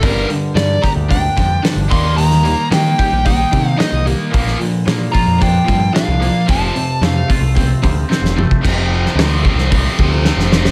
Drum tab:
CC |----------------|----------------|----------------|----------------|
HH |o-o-o-o-o-o-o-o-|o-o-o-o-o-o-o-o-|o-o-o-o-o-o-o-o-|o-o-o-o-o-o-----|
SD |----o-o-----o---|-o--o-------o---|-o--o-------o---|----o-------oo--|
T2 |----------------|----------------|----------------|--------------o-|
BD |o-----o-o-o---o-|------o-o-o-----|o-----o-o-o-----|o-----o-o-o----o|

CC |x---------------|
HH |----o---o-------|
SD |---oo--o----oooo|
T2 |----------------|
BD |o-----o-o-o-----|